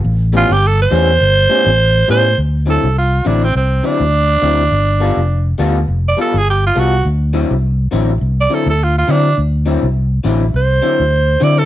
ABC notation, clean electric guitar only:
X:1
M:4/4
L:1/8
Q:"Swing 16ths" 1/4=103
K:Dmix
V:1 name="Clean electric guitar"
z [A,,G,B,^C] z [A,,G,B,C] z [A,,G,B,C] z [A,,G,B,C] | z [D,F,CE] z [D,F,CE] z [D,F,CE] z [D,F,CE] | z [G,B,=FA] z [G,B,FA] z [G,B,FA] z [G,B,FA] | z [D,F,CE] z [D,F,CE] z [D,F,CE] z [D,F,CE] |
z [D,F,CE] z [D,F,CE] z [D,F,CE] z [D,F,CE] |]